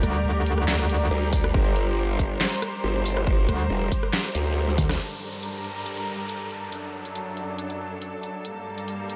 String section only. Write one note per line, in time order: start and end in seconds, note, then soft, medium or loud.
0.00 4.96 G3 medium
0.00 4.96 G4 medium
0.00 4.96 A#4 medium
0.00 1.53 D5 medium
1.54 4.98 C5 medium
5.00 6.71 G2 medium
5.00 6.71 G3 medium
5.00 9.16 A4 medium
5.00 6.71 A#4 medium
6.72 8.43 F#2 medium
6.72 8.43 F#3 medium
6.72 8.43 D4 medium
8.45 9.16 G2 medium
8.45 9.16 G3 medium
8.45 9.16 A#3 medium